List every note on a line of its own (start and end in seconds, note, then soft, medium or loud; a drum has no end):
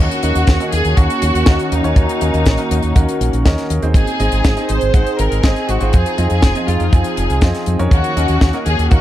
0.00 3.91 D#3 medium
0.00 3.91 A#3 medium
0.00 0.20 C#4 medium
0.00 3.91 C#4 medium
0.00 0.20 F#4 medium
0.00 0.69 F#4 loud
0.00 3.91 F#4 medium
0.00 0.20 A#4 medium
0.00 0.20 C#5 loud
0.11 closed hi-hat medium
0.23 0.32 D#2 medium
0.23 0.57 C#4 medium
0.23 0.57 F#4 medium
0.23 0.57 A#4 medium
0.23 0.57 D#5 loud
0.23 closed hi-hat medium
0.35 0.45 D#2 medium
0.35 closed hi-hat medium
0.47 0.57 D#2 loud
0.47 kick loud
0.47 snare loud
0.47 closed hi-hat medium
0.60 0.76 C#4 medium
0.60 0.76 F#4 medium
0.60 0.76 A#4 medium
0.60 0.76 D#5 medium
0.60 closed hi-hat medium
0.72 0.82 D#2 medium
0.72 0.97 G#4 loud
0.72 closed hi-hat loud
0.85 0.94 D#2 medium
0.85 closed hi-hat medium
0.97 1.07 D#2 loud
0.97 1.44 C#4 medium
0.97 1.72 F#4 loud
0.97 1.44 F#4 medium
0.97 1.44 A#4 medium
0.97 1.44 F#5 medium
0.97 kick loud
0.97 closed hi-hat medium
1.10 closed hi-hat medium
1.22 1.31 D#2 medium
1.22 closed hi-hat loud
1.35 1.44 D#2 medium
1.35 closed hi-hat medium
1.46 1.56 D#2 loud
1.46 1.81 C#4 medium
1.46 1.81 F#4 medium
1.46 1.81 A#4 medium
1.46 1.81 D#5 loud
1.46 kick loud
1.46 snare loud
1.46 closed hi-hat medium
1.59 closed hi-hat medium
1.71 1.81 D#2 medium
1.71 3.70 D#4 loud
1.71 closed hi-hat medium
1.84 1.93 D#2 medium
1.84 2.18 C#4 medium
1.84 2.18 F#4 medium
1.84 2.18 A#4 medium
1.84 2.18 C#5 loud
1.84 closed hi-hat medium
1.96 2.06 D#2 loud
1.96 kick loud
1.96 closed hi-hat medium
2.09 closed hi-hat medium
2.21 2.31 D#2 medium
2.21 2.56 C#4 medium
2.21 2.56 F#4 medium
2.21 2.56 A#4 medium
2.21 2.56 D#5 loud
2.21 closed hi-hat medium
2.34 2.43 D#2 medium
2.34 closed hi-hat medium
2.46 2.56 A#1 loud
2.46 kick loud
2.46 snare loud
2.46 closed hi-hat medium
2.58 2.74 C#4 medium
2.58 2.74 F#4 medium
2.58 2.74 A#4 medium
2.58 2.74 D#5 medium
2.58 closed hi-hat medium
2.71 2.80 D#2 medium
2.71 closed hi-hat loud
2.83 2.93 D#2 medium
2.83 closed hi-hat soft
2.96 3.05 D#2 loud
2.96 3.42 C#4 medium
2.96 3.42 F#4 medium
2.96 3.42 A#4 medium
2.96 3.42 F#5 medium
2.96 kick loud
2.96 closed hi-hat medium
3.09 closed hi-hat medium
3.21 3.30 A#1 medium
3.21 closed hi-hat medium
3.33 3.42 A#1 medium
3.33 closed hi-hat medium
3.45 3.55 D#2 loud
3.45 3.80 C#4 loud
3.45 3.80 F#4 medium
3.45 3.80 A#4 medium
3.45 3.80 D#5 loud
3.45 kick loud
3.45 snare loud
3.45 closed hi-hat medium
3.57 snare soft
3.57 closed hi-hat medium
3.70 3.79 D#2 medium
3.70 closed hi-hat loud
3.82 3.92 D#2 medium
3.82 4.17 C4 medium
3.82 4.17 D#4 medium
3.82 4.17 G#4 medium
3.82 4.17 C5 loud
3.82 closed hi-hat medium
3.94 4.04 G#1 loud
3.94 7.88 C4 medium
3.94 7.88 D#4 medium
3.94 5.91 G#4 medium
3.94 4.65 G#4 loud
3.94 kick loud
3.94 closed hi-hat medium
4.07 closed hi-hat medium
4.20 4.29 G#1 medium
4.20 4.54 C4 medium
4.20 4.54 D#4 medium
4.20 4.54 G#4 medium
4.20 4.54 D#5 loud
4.20 closed hi-hat medium
4.32 4.41 G#1 medium
4.32 closed hi-hat medium
4.44 4.54 G#1 loud
4.44 kick loud
4.44 snare loud
4.44 closed hi-hat medium
4.57 4.72 C4 medium
4.57 4.72 D#4 medium
4.57 4.72 G#4 medium
4.57 4.72 D#5 medium
4.57 closed hi-hat medium
4.69 4.79 G#1 medium
4.69 5.19 C5 loud
4.69 closed hi-hat loud
4.81 4.91 G#1 medium
4.81 closed hi-hat medium
4.94 5.03 G#1 loud
4.94 5.41 C4 medium
4.94 5.41 D#4 medium
4.94 5.41 G#4 medium
4.94 5.41 F#5 medium
4.94 kick loud
4.94 closed hi-hat medium
5.07 closed hi-hat medium
5.19 5.28 G#1 medium
5.19 5.44 A#4 loud
5.19 closed hi-hat medium
5.31 5.40 G#1 medium
5.31 closed hi-hat medium
5.43 5.53 G#1 loud
5.43 5.78 C4 medium
5.43 5.78 D#4 medium
5.43 5.68 G#4 loud
5.43 5.78 G#4 medium
5.43 5.78 D#5 loud
5.43 kick loud
5.43 snare loud
5.43 closed hi-hat medium
5.56 closed hi-hat medium
5.69 5.78 G#1 medium
5.69 5.93 F#4 medium
5.69 closed hi-hat medium
5.81 5.90 G#1 medium
5.81 6.15 C4 medium
5.81 6.15 F4 medium
5.81 6.15 G#4 medium
5.81 6.15 C5 loud
5.81 closed hi-hat medium
5.93 6.03 F2 loud
5.93 7.90 F3 medium
5.93 7.90 G#4 medium
5.93 6.29 G#4 loud
5.93 kick loud
5.93 closed hi-hat medium
6.06 closed hi-hat medium
6.18 6.27 F2 medium
6.18 6.52 C4 medium
6.18 6.52 F4 medium
6.18 6.52 G#4 medium
6.18 6.52 D#5 medium
6.18 closed hi-hat loud
6.30 6.40 F2 medium
6.30 6.65 G#4 loud
6.30 closed hi-hat medium
6.42 6.52 F1 medium
6.42 kick loud
6.42 snare loud
6.42 closed hi-hat medium
6.55 6.71 C4 medium
6.55 6.71 F4 medium
6.55 6.71 G#4 medium
6.55 6.71 D#5 medium
6.55 closed hi-hat medium
6.68 6.77 F2 medium
6.68 6.93 F4 medium
6.68 closed hi-hat medium
6.80 6.89 F2 medium
6.80 closed hi-hat soft
6.93 7.02 F2 loud
6.93 7.39 C4 medium
6.93 7.39 F4 medium
6.93 7.67 G#4 medium
6.93 7.39 G#4 medium
6.93 7.39 G#5 medium
6.93 kick loud
6.93 closed hi-hat medium
7.04 closed hi-hat medium
7.17 7.27 F1 medium
7.17 closed hi-hat medium
7.30 7.39 C2 medium
7.30 closed hi-hat soft
7.41 7.51 F2 loud
7.41 7.76 C4 medium
7.41 7.76 F4 medium
7.41 7.76 G#4 medium
7.41 7.76 D#5 loud
7.41 kick loud
7.41 snare loud
7.41 closed hi-hat medium
7.55 snare soft
7.55 closed hi-hat medium
7.66 7.76 F2 medium
7.66 closed hi-hat medium
7.79 7.89 F2 medium
7.79 8.14 C#4 medium
7.79 8.14 F#4 medium
7.79 8.14 A#4 medium
7.79 8.14 C#5 loud
7.79 closed hi-hat medium
7.91 8.01 D#2 loud
7.91 9.01 D#3 medium
7.91 9.01 A#3 medium
7.91 9.01 C#4 medium
7.91 8.62 F#4 loud
7.91 9.01 F#4 medium
7.91 kick loud
7.91 closed hi-hat medium
8.04 closed hi-hat medium
8.17 8.26 D#2 medium
8.17 8.51 C#4 medium
8.17 8.51 F#4 medium
8.17 8.51 A#4 medium
8.17 8.51 D#5 medium
8.17 closed hi-hat medium
8.28 8.38 D#2 medium
8.28 closed hi-hat medium
8.41 8.50 D#2 loud
8.41 kick loud
8.41 snare loud
8.41 closed hi-hat medium
8.53 8.69 C#4 medium
8.53 8.69 F#4 medium
8.53 8.69 A#4 medium
8.53 8.69 D#5 medium
8.53 closed hi-hat medium
8.66 8.75 D#2 medium
8.66 8.89 G#4 loud
8.66 closed hi-hat medium
8.79 8.88 D#2 medium
8.79 closed hi-hat medium
8.91 9.00 D#2 loud
8.91 9.01 C#4 medium
8.91 9.01 F#4 medium
8.91 9.01 F#4 loud
8.91 9.01 A#4 medium
8.91 9.01 F#5 medium
8.91 kick loud
8.91 closed hi-hat medium